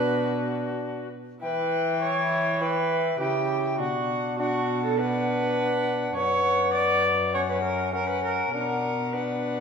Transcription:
Already playing: cello B2, bassoon D4, recorder F#4, viola B4
1.42 cello E3, bassoon E4, viola B4, recorder G5
2.02 viola C#5
2.61 bassoon E4, viola B4, recorder G5
3.20 cello C#3, bassoon E4, viola G4, recorder G5
3.79 cello B2, bassoon D4, viola F#4, recorder F#5
4.39 bassoon D4, viola F#4, recorder F#5
4.84 viola A4
4.98 bassoon D4, viola B4, recorder F#5
6.16 cello F#2, bassoon B3, viola C#5, recorder F#5
6.74 viola D5
7.34 bassoon C#4, viola C#5, recorder F#5
7.50 viola B4
7.64 viola A#4
7.93 bassoon C#4, viola A#4, recorder F#5
8.09 viola B4
8.24 viola A#4
8.53 cello B2, bassoon D4, viola A#4, recorder F#5
9.13 bassoon D4, viola B4, recorder F#5

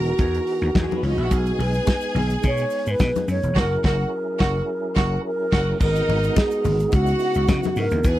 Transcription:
Already playing: slap bass E1, tonewheel organ E3 B3 D#4 F#4 G#4, alto flute F#4, string section A#4 A#5
0.06 closed hi-hat
0.19 slap bass E2, kick, closed hi-hat, muted conga
0.34 closed hi-hat
0.47 open hi-hat
0.62 slap bass D#2, closed hi-hat
0.75 slap bass E2, kick, snare, closed hi-hat, high conga
0.82 string section G#3 G#4
0.90 string section A#3 A#4, closed hi-hat, high conga
0.96 string section B3 B4
1.03 slap bass C#2, string section C#4 C#5, alto flute F#4, open hi-hat
1.10 string section D#4 D#5
1.17 slap bass A#1, string section E4 E5, closed hi-hat
1.25 string section F#4 F#5
1.31 slap bass B1, tonewheel organ G#3, string section G#4 G#5, kick, closed hi-hat, shaker
1.46 closed hi-hat, shaker
1.59 slap bass B1, alto flute B4, open hi-hat, muted conga
1.74 closed hi-hat, shaker
1.86 kick, snare, closed hi-hat, high conga, shaker
2.00 closed hi-hat, shaker
2.15 slap bass B1, open hi-hat, muted conga, low conga
2.30 closed hi-hat, shaker
2.43 slap bass B2, kick, closed hi-hat, muted conga, shaker
2.47 alto flute C#5
2.57 closed hi-hat, shaker
2.70 open hi-hat, shaker
2.86 slap bass G#2, closed hi-hat, shaker
2.90 alto flute B4
2.99 slap bass B2, kick, snare, closed hi-hat, high conga, shaker
3.16 snare, closed hi-hat, high conga, shaker
3.28 slap bass F#2, alto flute C#5, open hi-hat, shaker
3.43 slap bass E1, closed hi-hat, shaker
3.55 slap bass F#1, tonewheel organ F#3 C#4 E4 G#4 A#4, string section F#4 F#5, kick, snare, crash
3.59 alto flute A#4
3.83 slap bass F#1, string section F#4 F#5, alto flute A#4, kick, snare
4.38 slap bass F#1, string section F#4 F#5, kick, snare
4.95 slap bass F#1, string section F#4 F#5, kick, snare
5.27 alto flute A#4
5.51 slap bass F#1, string section F#4 F#5, kick, snare, crash
5.79 slap bass G#1, tonewheel organ G#3 B3 D#4 F#4 A#4, string section D#4 D#5, alto flute A#4, kick, crash, shaker
5.96 closed hi-hat, shaker
6.08 slap bass G#1, open hi-hat, muted conga
6.23 closed hi-hat, shaker
6.36 alto flute G#4, kick, snare, closed hi-hat, high conga, shaker
6.51 closed hi-hat, shaker
6.64 slap bass G#1, open hi-hat, muted conga, low conga, shaker
6.80 closed hi-hat, shaker
6.92 slap bass C#2, tonewheel organ C#3 B3 E4, string section F#4 F#5, alto flute F#4, kick, closed hi-hat, muted conga, shaker
7.06 closed hi-hat, shaker
7.19 open hi-hat, shaker
7.34 slap bass C#2, closed hi-hat, shaker
7.48 slap bass C#3, kick, snare, closed hi-hat, high conga, shaker
7.63 snare, closed hi-hat, high conga, shaker
7.76 slap bass G#2, alto flute A#4, open hi-hat, shaker
7.91 slap bass D#2, closed hi-hat, high conga, shaker
8.04 slap bass E2, tonewheel organ E3 G#4, string section G#4 G#5, alto flute B4, kick, closed hi-hat, shaker

